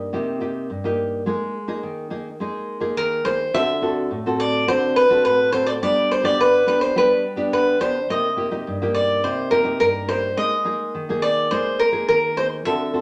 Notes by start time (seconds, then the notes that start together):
Already playing: G2 D#5
0.13 C3 A#3 D#4 G4
0.40 A#3 D#4 G4
0.70 G2
0.84 A#3 D#4 G4
1.26 G#3 A#3 D#4 G#4
1.68 A#3 D#4 G#4
1.83 D#3
2.10 A#3 D#4 G#4
2.40 G#3 A#3 D#4 G#4
2.80 A#3 D#4 G#4
2.96 D#3 A#4
3.25 A#3 D#4 G#4 C5
3.54 D3 C4 F#4 A4 E5
3.82 C4 F#4 A4
4.11 A2
4.26 C4 F#4 A4
4.40 D5
4.67 D3 C4 F#4 A4 C5
4.96 B4
5.09 C4 F#4 A4
5.25 A2 B4
5.52 C4 F#4 A4 C5
5.66 D5
5.82 G3 B3 D4 G4 D5
6.11 C5
6.23 B3 D4 G4 D5
6.39 D3 B4
6.67 B3 D4 G4 B4
6.81 C5
6.96 G3 B3 D4 G4 B4
7.36 B3 D4 G4
7.52 D3 B4
7.80 B3 D4 G4 C5
8.10 C3 A#3 D#4 G4 D#5
8.37 A#3 D#4 G4
8.51 A#3 D#4 G4
8.67 G2
8.82 A#3 D#4 G4
8.95 D5
9.23 C3 A#3 D#4 G4 C5
9.51 A#3 D#4 G4 A#4
9.64 A#3 D#4 G4
9.80 G2 A#4
10.08 A#3 D#4 G4 C5
10.37 G#3 A#3 D#4 G#4 D#5
10.65 A#3 D#4 G#4
10.95 D#3
11.09 A#3 D#4 G#4
11.22 D5
11.51 G#3 A#3 D#4 G#4 C5
11.79 A#4
11.92 A#3 D#4 G#4
12.08 D#3 A#4
12.37 A#3 D#4 G#4 C5
12.65 D3 C4 F#4 A4 E5
12.93 C4 F#4 A4